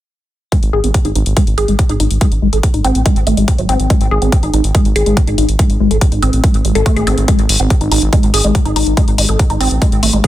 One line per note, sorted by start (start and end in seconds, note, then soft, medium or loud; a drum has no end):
0.52 0.57 G#3 medium
0.52 kick loud
0.52 closed hi-hat medium
0.63 0.70 G#1 medium
0.63 closed hi-hat soft
0.73 0.81 G#1 loud
0.73 0.78 G#4 loud
0.84 0.91 G#1 medium
0.84 0.91 C4 medium
0.84 closed hi-hat soft
0.94 kick loud
0.94 closed hi-hat medium
1.05 1.13 G#1 medium
1.05 1.08 D#4 medium
1.05 closed hi-hat soft
1.15 1.23 G#1 loud
1.15 1.20 D#4 medium
1.15 closed hi-hat medium
1.26 1.34 G#1 medium
1.26 closed hi-hat soft
1.37 1.44 G#3 medium
1.37 kick loud
1.37 closed hi-hat loud
1.47 1.55 G#1 medium
1.47 closed hi-hat soft
1.58 1.65 G#1 loud
1.58 1.62 G#4 loud
1.58 closed hi-hat medium
1.68 1.76 G#1 medium
1.68 1.73 G#3 medium
1.68 closed hi-hat soft
1.79 kick loud
1.79 closed hi-hat medium
1.89 1.97 G#1 medium
1.89 1.92 D#4 medium
1.89 closed hi-hat soft
2.00 2.08 G#1 loud
2.00 2.05 D#4 medium
2.00 closed hi-hat medium
2.11 2.18 G#1 medium
2.11 closed hi-hat soft
2.21 2.28 G#3 medium
2.21 kick loud
2.21 closed hi-hat medium
2.32 2.39 G#1 medium
2.32 closed hi-hat soft
2.42 2.50 G#1 loud
2.42 2.49 G#3 medium
2.53 2.60 G#1 medium
2.53 2.60 A4 medium
2.53 closed hi-hat soft
2.63 kick loud
2.63 closed hi-hat medium
2.74 2.82 G#1 medium
2.74 2.77 D#4 medium
2.74 closed hi-hat soft
2.85 2.92 G#1 loud
2.85 2.89 C4 loud
2.85 closed hi-hat medium
2.95 3.03 A1 medium
2.95 closed hi-hat soft
3.06 3.13 G#3 medium
3.06 kick loud
3.06 closed hi-hat loud
3.16 3.24 G#1 medium
3.16 closed hi-hat soft
3.27 3.34 G#1 loud
3.27 3.34 A3 medium
3.27 closed hi-hat medium
3.37 3.45 G#1 medium
3.37 3.42 G#3 medium
3.37 closed hi-hat soft
3.48 kick loud
3.48 closed hi-hat medium
3.58 3.66 G#1 medium
3.58 3.61 F#3 medium
3.58 closed hi-hat soft
3.69 3.77 G#1 loud
3.69 3.74 C4 loud
3.69 closed hi-hat medium
3.80 3.87 G#1 medium
3.80 closed hi-hat soft
3.90 3.95 G#3 medium
3.90 kick loud
3.90 closed hi-hat medium
4.01 4.08 G#1 medium
4.01 closed hi-hat soft
4.11 4.19 G#1 loud
4.11 4.16 G#4 loud
4.22 4.29 G#1 medium
4.22 4.29 C4 medium
4.22 closed hi-hat soft
4.32 kick loud
4.32 closed hi-hat medium
4.43 4.51 G#1 medium
4.43 4.46 D#4 medium
4.43 closed hi-hat soft
4.54 4.61 G#1 loud
4.54 4.58 D#4 medium
4.54 closed hi-hat medium
4.64 4.72 G#1 medium
4.64 closed hi-hat soft
4.75 4.82 G#3 medium
4.75 kick loud
4.75 closed hi-hat medium
4.85 4.93 G#1 medium
4.85 closed hi-hat soft
4.96 5.03 G#1 medium
4.96 5.00 G#4 loud
4.96 closed hi-hat medium
5.06 5.14 G#1 medium
5.06 5.11 G#3 medium
5.06 closed hi-hat soft
5.17 kick loud
5.17 closed hi-hat medium
5.27 5.35 G#1 medium
5.27 5.30 D#4 medium
5.27 closed hi-hat soft
5.38 5.46 G#1 loud
5.38 5.43 D#4 medium
5.38 closed hi-hat medium
5.49 5.56 G#1 medium
5.49 closed hi-hat soft
5.59 5.66 G#3 medium
5.59 kick loud
5.59 closed hi-hat medium
5.70 5.77 G#1 medium
5.70 closed hi-hat soft
5.80 5.88 G#1 loud
5.80 5.87 G#3 medium
5.91 5.98 G#1 medium
5.91 5.98 A4 medium
5.91 closed hi-hat soft
6.01 kick loud
6.01 closed hi-hat medium
6.12 6.20 G#1 medium
6.12 6.15 D#4 medium
6.12 closed hi-hat soft
6.22 6.30 G#1 loud
6.22 6.27 C4 loud
6.22 closed hi-hat medium
6.33 6.41 A1 medium
6.33 closed hi-hat soft
6.44 6.51 G#3 medium
6.44 kick loud
6.44 closed hi-hat medium
6.54 6.62 G#1 medium
6.54 closed hi-hat soft
6.65 6.72 G#1 medium
6.65 6.68 G#3 medium
6.65 closed hi-hat medium
6.75 6.83 G#1 medium
6.75 6.78 A4 loud
6.75 closed hi-hat soft
6.86 6.93 A3 loud
6.86 kick loud
6.86 closed hi-hat medium
6.96 7.04 G#1 medium
6.96 6.99 G#4 loud
6.96 closed hi-hat soft
7.07 7.15 G#1 loud
7.07 7.14 C4 loud
7.07 closed hi-hat medium
7.18 7.25 G#1 loud
7.18 closed hi-hat soft
7.28 7.33 G#3 medium
7.28 kick loud
7.28 closed hi-hat medium
7.39 7.46 G#1 medium
7.39 closed hi-hat soft
7.49 7.57 G#1 loud
7.49 open hi-hat loud
7.60 7.67 G#1 medium
7.60 7.67 C4 medium
7.60 closed hi-hat soft
7.70 kick loud
7.70 closed hi-hat medium
7.81 7.89 G#1 medium
7.81 7.84 D#4 medium
7.81 closed hi-hat soft
7.91 7.99 G#1 loud
7.91 7.96 D#4 medium
7.91 open hi-hat loud
8.02 8.10 G#1 medium
8.02 closed hi-hat soft
8.13 8.20 G#3 medium
8.13 kick loud
8.13 closed hi-hat medium
8.23 8.31 G#1 medium
8.23 closed hi-hat soft
8.34 8.41 G#1 loud
8.34 8.38 G#4 loud
8.34 open hi-hat loud
8.44 8.52 G#1 medium
8.44 8.49 G#3 medium
8.44 closed hi-hat soft
8.55 kick loud
8.55 closed hi-hat medium
8.65 8.73 G#1 medium
8.65 8.68 D#4 medium
8.65 closed hi-hat soft
8.76 8.84 G#1 loud
8.76 8.81 D#4 medium
8.76 open hi-hat loud
8.87 8.94 G#1 medium
8.87 closed hi-hat soft
8.97 9.04 G#3 medium
8.97 kick loud
8.97 closed hi-hat medium
9.08 9.15 G#1 medium
9.08 closed hi-hat soft
9.18 9.26 G#1 loud
9.18 9.25 G#3 medium
9.18 open hi-hat loud
9.29 9.36 G#1 medium
9.29 9.36 A4 medium
9.29 closed hi-hat soft
9.39 kick loud
9.39 closed hi-hat medium
9.50 9.58 G#1 medium
9.50 9.53 D#4 medium
9.50 closed hi-hat soft
9.61 9.68 G#1 loud
9.61 9.65 C4 loud
9.61 open hi-hat loud
9.71 9.79 A1 medium
9.71 closed hi-hat soft
9.82 9.89 G#3 medium
9.82 kick loud
9.82 closed hi-hat medium
9.92 10.00 G#1 medium
9.92 closed hi-hat soft
10.03 10.10 G#1 loud
10.03 10.10 A3 medium
10.03 open hi-hat loud
10.13 10.21 G#1 medium
10.13 10.18 G#3 medium
10.13 closed hi-hat soft
10.24 10.27 G#4 loud
10.24 kick loud
10.24 closed hi-hat medium